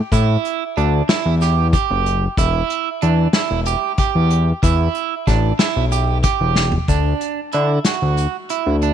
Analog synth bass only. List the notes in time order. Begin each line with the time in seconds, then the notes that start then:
0.12 A2
0.77 D2
1.26 E2
1.91 F#1
2.38 E1
3.03 E2
3.51 E1
4.15 E2
4.63 E2
5.27 A1
5.76 B1
6.41 E1
6.89 D2
7.54 D3
8.02 D2
8.66 D2